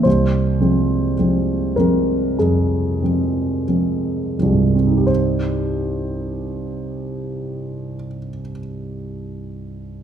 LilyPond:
<<
  \new Staff \with { instrumentName = "Grand piano" } { \time 4/4 \key c \minor \tempo 4 = 48 c''4. bes'8 aes'4. r8 | <c, g, g c' ees' g' c''>1 | }
  \new Staff \with { instrumentName = "Grand piano" } { \clef bass \time 4/4 \key c \minor c,8 <f aes c'>8 <f aes c'>8 <f aes c'>8 f,8 <f aes c'>8 <f aes c'>8 <f aes c'>8 | r1 | }
>>